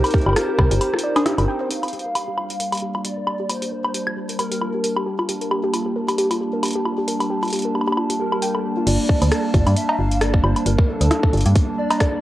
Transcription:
Already playing: ambient pad C4 D#4 G4 C5, soft synth lead A#4
0.04 synth pluck A#4, closed hi-hat, high woodblock
0.06 closed hi-hat
0.10 synth pluck G4, kick, closed hi-hat
0.18 closed hi-hat
0.21 closed hi-hat
0.26 fm bass G1, synth pluck G4, high woodblock
0.29 high woodblock
0.33 synth pluck F4, cross-stick, closed hi-hat, high woodblock
0.49 synth pluck G4
0.58 fm bass C2, synth pluck A#4, kick, cross-stick, high woodblock
0.71 fm bass G1, synth pluck G4, closed hi-hat
0.81 synth pluck G4, closed hi-hat, high woodblock
0.93 synth pluck F4, cross-stick
0.99 closed hi-hat
1.03 synth pluck D5
1.16 synth pluck D4, closed hi-hat, cowbell, high woodblock
1.26 synth pluck G4, cross-stick, closed hi-hat
1.38 fm bass G1, synth pluck A#4, closed hi-hat, high woodblock
1.48 synth pluck G5
1.61 synth pluck C5
1.70 ambient pad G3, synth pluck G4, soft synth lead F5, closed hi-hat
1.83 ambient pad D4, synth pluck F4, closed hi-hat, high woodblock
1.88 closed hi-hat
1.93 synth pluck G4, closed hi-hat
1.99 ambient pad A#3, closed hi-hat
2.05 synth pluck A#4
2.15 synth pluck G4, closed hi-hat, high woodblock
2.25 synth pluck G4, ambient pad A5
2.38 synth pluck F4, high woodblock
2.50 synth pluck G4, closed hi-hat
2.60 synth pluck A#4, closed hi-hat
2.72 synth pluck G4, closed hi-hat, high woodblock
2.75 closed hi-hat
2.77 closed hi-hat
2.80 synth pluck G4, closed hi-hat
2.95 synth pluck F4, high woodblock
3.05 synth pluck G4, soft synth lead D5, closed hi-hat
3.17 synth pluck A#4
3.27 synth pluck G4, high woodblock
3.40 synth pluck G4
3.50 synth pluck F4, soft synth lead C5, closed hi-hat, high woodblock
3.62 synth pluck G4, closed hi-hat
3.72 synth pluck A#4
3.85 synth pluck G4, high woodblock
3.94 synth pluck G4, closed hi-hat
4.07 synth pluck F4, high woodblock
4.17 synth pluck G4
4.29 synth pluck A#4, closed hi-hat
4.39 synth pluck G4, soft synth lead A#4, closed hi-hat, high woodblock
4.52 synth pluck G4, closed hi-hat
4.61 synth pluck F4, high woodblock
4.74 synth pluck G4
4.84 synth pluck A#4, closed hi-hat
4.96 synth pluck G4, high woodblock
5.06 synth pluck G4
5.19 synth pluck F4, high woodblock
5.29 synth pluck G4, closed hi-hat
5.41 synth pluck A#4, closed hi-hat
5.51 synth pluck G4, high woodblock
5.64 synth pluck G4
5.73 synth pluck F4, closed hi-hat, high woodblock
5.86 synth pluck G4
5.96 synth pluck A#4
6.08 synth pluck G4, closed hi-hat, high woodblock
6.18 synth pluck G4, closed hi-hat
6.31 synth pluck F4, closed hi-hat, high woodblock
6.41 synth pluck G4
6.53 synth pluck A#4
6.63 synth pluck G4, closed hi-hat, high woodblock
6.66 closed hi-hat
6.68 closed hi-hat
6.71 closed hi-hat
6.73 synth pluck G4, closed hi-hat
6.85 synth pluck F4, high woodblock
6.98 synth pluck G4
7.08 synth pluck A#4, closed hi-hat
7.20 synth pluck G4, closed hi-hat, high woodblock
7.30 synth pluck G4
7.43 synth pluck F4, closed hi-hat, high woodblock
7.45 closed hi-hat
7.48 closed hi-hat
7.50 synth pluck G4, closed hi-hat
7.53 closed hi-hat
7.56 closed hi-hat
7.59 closed hi-hat
7.62 synth pluck A#4, closed hi-hat
7.75 synth pluck G4, high woodblock
7.81 high woodblock
7.87 synth pluck G4, high woodblock
7.92 high woodblock
7.97 synth pluck F4, high woodblock
8.10 synth pluck G4, closed hi-hat
8.20 synth pluck G4, soft synth lead A#4
8.32 synth pluck G4, high woodblock
8.42 synth pluck G5, closed hi-hat
8.55 synth pluck A4, high woodblock
8.64 synth pluck G4
8.77 synth pluck F4
8.87 fm bass G1, soft synth lead D5, closed hi-hat, crash
9.09 kick
9.22 fm bass D2, closed hi-hat, high woodblock
9.32 cross-stick, closed hi-hat
9.54 fm bass G1, kick, closed hi-hat
9.67 fm bass G2, closed hi-hat, high woodblock
9.76 soft synth lead E5, closed hi-hat
9.89 cowbell
9.99 fm bass G1, soft synth lead F5
10.11 closed hi-hat
10.21 soft synth lead D5, cross-stick, closed hi-hat
10.34 kick
10.44 fm bass G1, soft synth lead C5, high woodblock
10.56 closed hi-hat, high woodblock
10.66 fm bass G1, soft synth lead A#4, closed hi-hat
10.78 kick
10.89 soft synth lead A4
11.01 fm bass D2, closed hi-hat
11.11 cross-stick, closed hi-hat
11.23 kick
11.33 fm bass G1, closed hi-hat
11.37 closed hi-hat
11.41 closed hi-hat
11.46 fm bass G2, closed hi-hat
11.55 kick, closed hi-hat
11.78 soft synth lead D5
11.90 closed hi-hat, cowbell, high woodblock
12.00 kick, cross-stick, closed hi-hat

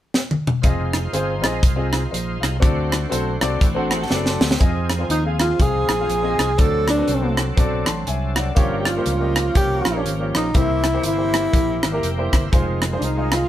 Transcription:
0.14 snare
0.31 high tom
0.47 mid tom
0.61 fingered electric bass F1, tonewheel organ G#3 D#4 F4 C5, grand piano C4 F4 G#4 D#5, kick, closed hi-hat
0.93 cross-stick, closed hi-hat
1.13 fingered electric bass G1, grand piano C4 F4 G#4 C5, closed hi-hat
1.42 fingered electric bass A#1, grand piano C4 F4 G#4 D#5, cross-stick, closed hi-hat
1.62 fingered electric bass C2, kick, closed hi-hat
1.76 grand piano C4 F4 G#4 D#5
1.93 cross-stick, closed hi-hat
2.11 fingered electric bass A#1, grand piano C5 D#5, closed hi-hat
2.40 fingered electric bass C2, grand piano F5, cross-stick, closed hi-hat
2.60 fingered electric bass D2, grand piano D3 C4 F#4 A4 D5, tonewheel organ A3 D4 F#4 C5, kick, closed hi-hat
2.92 cross-stick, closed hi-hat
3.10 fingered electric bass B1, grand piano C4 F#4 A4 C5, closed hi-hat
3.41 fingered electric bass C2, grand piano C4 F#4 A4 D5, cross-stick, closed hi-hat
3.61 fingered electric bass A1, clean electric guitar C4 E4, kick, closed hi-hat
3.75 grand piano C4 F#4 A4 C5, clean electric guitar D4 F#4
3.91 clean electric guitar E4 G#4, cross-stick, closed hi-hat
4.01 clean electric guitar F#4 A4
4.10 fingered electric bass F#1, grand piano C4 F#4 A4 D5, clean electric guitar G#4 B4, snare
4.26 clean electric guitar A4 C5, snare
4.40 fingered electric bass D2, snare
4.51 snare
4.57 fingered electric bass F2, tonewheel organ F3 C4 D#4 G#4, grand piano C4 F4 G#4, kick, closed hi-hat
4.62 grand piano D#5
4.90 cross-stick, closed hi-hat
4.99 grand piano C4 F4 G#4 C5
5.09 fingered electric bass D#2, tenor saxophone D#4, closed hi-hat
5.25 grand piano C4 F4 G#4 F5
5.39 tenor saxophone F4, cross-stick, closed hi-hat
5.59 fingered electric bass C2, grand piano C4 F4 G#4 F5, tenor saxophone G#4, kick, closed hi-hat
5.88 fingered electric bass A#1, cross-stick, closed hi-hat
6.00 grand piano C4 F4 G#4 F5
6.08 fingered electric bass A#1, closed hi-hat
6.23 grand piano C4 F4 G#4 D#5
6.38 fingered electric bass C2, cross-stick, closed hi-hat
6.57 fingered electric bass D2, grand piano D3 C4 F#4 A4 D5, tonewheel organ F#3 C4 D4 A4, tenor saxophone A4, kick, closed hi-hat
6.88 tenor saxophone D4, cross-stick, closed hi-hat
6.97 grand piano C4 F#4 A4 B4
7.08 fingered electric bass C2, closed hi-hat
7.21 grand piano C4 F#4 A4 C5
7.37 cross-stick, closed hi-hat
7.57 fingered electric bass B1, grand piano C4 F#4 A4 D5, kick, closed hi-hat
7.86 fingered electric bass A1, grand piano A5 C6, cross-stick, closed hi-hat
8.07 fingered electric bass C2, grand piano E5 G#5, closed hi-hat
8.36 grand piano D5 F#5, cross-stick, closed hi-hat
8.55 fingered electric bass G1, grand piano G2 A#3 F4 G4 C#5, tonewheel organ F3 A#3 C#4 G4, kick, closed hi-hat
8.79 tenor saxophone G4
8.85 tenor saxophone F4, cross-stick, closed hi-hat
8.97 grand piano A#3 F4 G4 C5
9.06 fingered electric bass C#2, closed hi-hat
9.20 grand piano A#3 F4 G4 D#5
9.36 cross-stick, closed hi-hat
9.55 fingered electric bass C2, grand piano A#3 F4 G4 C#5, tenor saxophone G4, kick, closed hi-hat
9.85 fingered electric bass A#1, cross-stick, closed hi-hat
9.95 grand piano A#3 F4 G4 C#5
10.04 fingered electric bass G#1, closed hi-hat
10.19 grand piano A#3 F4 G4 C#5
10.34 fingered electric bass A#1, tenor saxophone D#4, cross-stick, closed hi-hat
10.54 fingered electric bass C2, grand piano C3 A#3 E4 G4 C5, tonewheel organ C#3 A#3 C4 G4, tenor saxophone E4, kick, closed hi-hat
10.60 tonewheel organ E3
10.84 cross-stick, closed hi-hat
10.93 grand piano A#3 E4 G4 C5
11.03 fingered electric bass G1, tenor saxophone E4, closed hi-hat
11.16 grand piano A#3 E4 G4 C5
11.34 cross-stick, closed hi-hat
11.52 fingered electric bass A#1, grand piano A#3 E4 G4 A#4, kick, closed hi-hat
11.83 fingered electric bass G#1, cross-stick, closed hi-hat
11.92 grand piano A#3 E4 G4 A#4
12.01 fingered electric bass F1, tonewheel organ G5, closed hi-hat
12.18 grand piano A#3 E4 G4 C5
12.31 fingered electric bass G1, tonewheel organ E5, kick, cross-stick, closed hi-hat
12.51 fingered electric bass F1, tonewheel organ D#3 G3 C4 F4, grand piano G#3 D#4 F4 C5, kick, closed hi-hat
12.57 tonewheel organ G#3
12.82 cross-stick, closed hi-hat
12.92 grand piano G#3 D#4 F4 C5
12.98 fingered electric bass C2, tenor saxophone D4, closed hi-hat
13.04 tenor saxophone D#4
13.17 grand piano G#3 D#4 F4 D#5
13.32 tenor saxophone F4, cross-stick, closed hi-hat

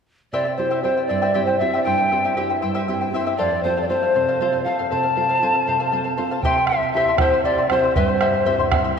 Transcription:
0.33 nylon-string guitar C3, charango E4 G4 C5 E5 G5, pan flute D5
0.45 charango E4 C5 G5
0.56 nylon-string guitar C4 E4 G4, charango E4 C5 E5 G5, pan flute C5
0.70 charango E4 G4 C5 E5 G5
0.83 nylon-string guitar C4 E4 G4, charango E4 C5 E5 G5, pan flute C5
0.97 charango E4 C5 G5
1.06 nylon-string guitar G2, charango E4 C5 E5, pan flute D5
1.11 charango G5
1.22 charango E4 G4 C5 E5 G5
1.34 nylon-string guitar C4 E4 G4, charango E4 G4 C5 E5 G5
1.45 charango E4 C5 G5, pan flute C5
1.58 nylon-string guitar C4 E4 G4, charango E4 C5 E5 G5, pan flute E5
1.73 charango E4 G4 C5 E5 G5
1.83 nylon-string guitar G2, charango E4 C5 E5, pan flute G5
1.87 charango G5
1.98 charango E4 C5 G5
2.11 nylon-string guitar C4 E4 G4, charango E4 C5 E5 G5
2.25 charango E4 G4 C5 E5 G5
2.37 nylon-string guitar C4 E4 G4, charango E4 G4 C5 E5 G5
2.50 charango E4 C5 G5
2.62 nylon-string guitar G2, charango E4 C5 E5 G5
2.75 charango E4 G4 C5 E5 G5
2.88 nylon-string guitar C4 E4 G4, charango E4 C5 E5 G5
3.01 charango E4 C5 G5
3.13 nylon-string guitar C4 E4 G4, charango E4 C5 E5 G5
3.26 charango E4 G4 C5 E5 G5
3.38 nylon-string guitar F2, charango A4 C5 F5, pan flute D5
3.51 charango C5 F5
3.63 nylon-string guitar C4 F4 A4, charango A4 C5 F5, pan flute C5
3.77 charango A4 C5 F5
3.81 pan flute D5
3.88 nylon-string guitar C4 F4 A4, charango A4 C5 F5, pan flute C5
4.03 charango C5 F5
4.14 nylon-string guitar C3, charango A4 C5 F5
4.28 charango A4 C5 F5
4.40 nylon-string guitar C4 F4 A4, charango A4 C5 F5
4.53 charango C5 F5
4.64 nylon-string guitar C4 F4 A4, charango A4 C5 F5, pan flute F5
4.79 charango A4 C5 F5
4.90 nylon-string guitar C3, charango A4 C5 F5, pan flute A5
5.03 charango C5 F5
5.16 nylon-string guitar C4 F4 A4, charango A4 C5 F5
5.29 charango A4 C5 F5
5.42 nylon-string guitar C4 F4 A4, charango A4 C5 F5
5.54 charango C5 F5
5.67 nylon-string guitar C3, charango A4 C5 F5
5.80 charango A4 C5 F5
5.92 nylon-string guitar C4 F4 A4, charango A4 C5 F5
6.04 charango C5 F5
6.17 nylon-string guitar C4 F4 A4, charango A4 C5 F5
6.31 charango A4 C5 F5
6.43 nylon-string guitar C3, charango E4 G4 C5 E5 C6, pan flute G5, bombo low
6.56 charango E4 E5 C6, bombo rim
6.67 pan flute E5, bombo rim
6.71 charango E4 C5 E5 C6
6.83 charango E4 E5 C6
6.92 nylon-string guitar C4 E4 G4, pan flute E5
6.96 charango E4 G4 C5 E5 C6
7.05 charango E5 C6, bombo rim
7.10 charango E4
7.18 nylon-string guitar C4 E4 G4, charango E4 G4 C5 E5 C6, pan flute C5, bombo rim, bombo low
7.33 charango E4 E5 C6
7.44 charango E4 G4 C5 E5 C6, pan flute D5, bombo rim
7.58 charango E4 E5 C6, bombo rim
7.70 nylon-string guitar C4 E4 G4, charango E4 C5 E5 C6, pan flute C5, bombo rim
7.84 charango E4 E5 C6
7.96 nylon-string guitar G2, charango E4 G4 C5 E5 C6, pan flute B4, bombo low
8.08 charango E4 E5 C6, pan flute C5, bombo rim
8.21 charango E4 G4 C5 E5 C6, bombo rim
8.33 charango E4 E5 C6
8.45 nylon-string guitar C4 E4 G4, charango E4 G4 C5 E5 C6
8.59 charango E4 E5 C6, bombo rim
8.71 nylon-string guitar C4 E4 G4, charango E4 C5 E5 C6, bombo rim, bombo low
8.84 charango E4 E5 C6

